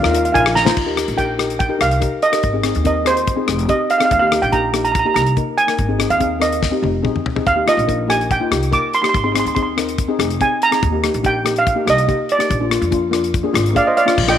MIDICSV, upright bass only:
0, 0, Header, 1, 2, 480
1, 0, Start_track
1, 0, Key_signature, -3, "major"
1, 0, Tempo, 418994
1, 879, Time_signature, 4, 2, 24, 8
1, 16476, End_track
2, 0, Start_track
2, 0, Title_t, "Upright bass"
2, 0, Program_c, 0, 32
2, 49, Note_on_c, 0, 39, 89
2, 337, Note_off_c, 0, 39, 0
2, 406, Note_on_c, 0, 34, 89
2, 793, Note_off_c, 0, 34, 0
2, 878, Note_on_c, 0, 39, 74
2, 1172, Note_off_c, 0, 39, 0
2, 1238, Note_on_c, 0, 34, 75
2, 1919, Note_off_c, 0, 34, 0
2, 2071, Note_on_c, 0, 36, 80
2, 2268, Note_off_c, 0, 36, 0
2, 2790, Note_on_c, 0, 32, 75
2, 3086, Note_off_c, 0, 32, 0
2, 3157, Note_on_c, 0, 39, 78
2, 3836, Note_off_c, 0, 39, 0
2, 3988, Note_on_c, 0, 29, 86
2, 4184, Note_off_c, 0, 29, 0
2, 4707, Note_on_c, 0, 39, 90
2, 5003, Note_off_c, 0, 39, 0
2, 5066, Note_on_c, 0, 34, 79
2, 5749, Note_off_c, 0, 34, 0
2, 5905, Note_on_c, 0, 36, 78
2, 6101, Note_off_c, 0, 36, 0
2, 6627, Note_on_c, 0, 32, 81
2, 6922, Note_off_c, 0, 32, 0
2, 6988, Note_on_c, 0, 39, 80
2, 7670, Note_off_c, 0, 39, 0
2, 7819, Note_on_c, 0, 29, 84
2, 8017, Note_off_c, 0, 29, 0
2, 8553, Note_on_c, 0, 39, 75
2, 8846, Note_off_c, 0, 39, 0
2, 8904, Note_on_c, 0, 34, 83
2, 9589, Note_off_c, 0, 34, 0
2, 9752, Note_on_c, 0, 36, 81
2, 9947, Note_off_c, 0, 36, 0
2, 10471, Note_on_c, 0, 32, 75
2, 10766, Note_off_c, 0, 32, 0
2, 10829, Note_on_c, 0, 39, 69
2, 11514, Note_off_c, 0, 39, 0
2, 11673, Note_on_c, 0, 29, 85
2, 11869, Note_off_c, 0, 29, 0
2, 12404, Note_on_c, 0, 39, 87
2, 12695, Note_off_c, 0, 39, 0
2, 12767, Note_on_c, 0, 34, 83
2, 13446, Note_off_c, 0, 34, 0
2, 13599, Note_on_c, 0, 36, 91
2, 13793, Note_off_c, 0, 36, 0
2, 14322, Note_on_c, 0, 34, 87
2, 14615, Note_off_c, 0, 34, 0
2, 14681, Note_on_c, 0, 41, 85
2, 15362, Note_off_c, 0, 41, 0
2, 15512, Note_on_c, 0, 32, 88
2, 15709, Note_off_c, 0, 32, 0
2, 16241, Note_on_c, 0, 34, 88
2, 16476, Note_off_c, 0, 34, 0
2, 16476, End_track
0, 0, End_of_file